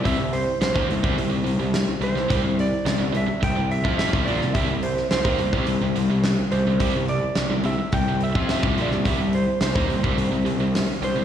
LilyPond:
<<
  \new Staff \with { instrumentName = "Electric slide guitar" } { \time 4/4 \key c \major \tempo 4 = 107 e''8 c''8 c''2~ c''8 c''8~ | c''8 d''4 e''8 g''8 e''8 e''8 d''8 | e''8 c''8 c''2~ c''8 c''8~ | c''8 d''4 e''8 g''8 e''8 e''8 d''8 |
e''8 c''8 c''2~ c''8 c''8 | }
  \new Staff \with { instrumentName = "Distorted electric guitar" } { \clef bass \time 4/4 \key c \major <c g>16 <c g>8 r16 <c g>16 <ees bes>16 <c g>16 <c g>16 <c g>16 <c g>16 <c g>16 <c g>8 r16 <c g>16 <c g>16 | <c g>16 <c g>8 r16 <c g>16 <c g>16 <c g>16 r16 <c g>16 <c g>8 <f c' f'>8 <c g>16 <bes, f>16 <c g>16 | <c g>16 <c g>8 r16 <c g>16 <ees bes>16 <c g>16 <c g>16 <c g>16 <c g>16 <c g>16 <c g>8 r16 <c g>16 <c g>16 | <c g>16 <c g>8 r16 <c g>16 <c g>16 <c g>16 r16 <c g>16 <c g>8 <f c' f'>8 <c g>16 <bes, f>16 <c g>16 |
<c g>16 <c g>8 r16 <c g>16 <ees bes>16 <c g>16 <c g>16 <c g>16 <c g>16 <c g>16 <c g>8 r16 <c g>16 <c g>16 | }
  \new Staff \with { instrumentName = "Overdriven electric guitar" } { \clef bass \time 4/4 \key c \major <c g>16 <c g>8 r16 <c g>16 <ees bes>16 <c g>16 <c g>16 <c g>16 <c g>16 <c g>16 <c g>8 r16 <c g>16 <c g>16 | <c g>16 <c g>8 r16 <c g>16 <c g>16 <c g>16 r16 <c g>16 <c g>8 <f c' f'>8 <c g>16 <bes, f>16 <c g>16 | <c g>16 <c g>8 r16 <c g>16 <ees bes>16 <c g>16 <c g>16 <c g>16 <c g>16 <c g>16 <c g>8 r16 <c g>16 <c g>16 | <c g>16 <c g>8 r16 <c g>16 <c g>16 <c g>16 r16 <c g>16 <c g>8 <f c' f'>8 <c g>16 <bes, f>16 <c g>16 |
<c g>16 <c g>8 r16 <c g>16 <ees bes>16 <c g>16 <c g>16 <c g>16 <c g>16 <c g>16 <c g>8 r16 <c g>16 <c g>16 | }
  \new Staff \with { instrumentName = "Picked electric bass" } { \clef bass \time 4/4 \key c \major c,16 c,8 r16 c,16 ees,16 c,16 c,16 c,16 c,16 c,16 c,8 r16 c,16 c,16 | c,16 c,8 r16 c,16 c,16 c,16 r16 c,16 c,8 f,8 c,16 bes,,16 c,16 | c,16 c,8 r16 c,16 ees,16 c,16 c,16 c,16 c,16 c,16 c,8 r16 c,16 c,16 | c,16 c,8 r16 c,16 c,16 c,16 r16 c,16 c,8 f,8 c,16 bes,,16 c,16 |
c,16 c,8 r16 c,16 ees,16 c,16 c,16 c,16 c,16 c,16 c,8 r16 c,16 c,16 | }
  \new DrumStaff \with { instrumentName = "Drums" } \drummode { \time 4/4 <hho bd>8 hho8 <hho sn>16 bd16 hho16 bd16 hho8 hho8 <hho sn>8 hho16 sn16 | <hho bd>8 hho8 <hho sn>8 hho8 <hho bd>8 hho16 bd16 <hho sn>16 bd16 hho16 sn16 | <hho bd>8 hho16 sn16 <hho sn>16 bd16 hho16 bd16 hho8 hho8 <hho sn>8 hho8 | <hho bd>8 hho8 <hho sn>8 hho8 <hho bd>8 hho16 bd16 <hho sn>16 bd16 hho16 sn16 |
<hho bd>8 hho8 <hho sn>16 bd16 hho16 bd16 hho8 hho8 <hho sn>8 hho8 | }
>>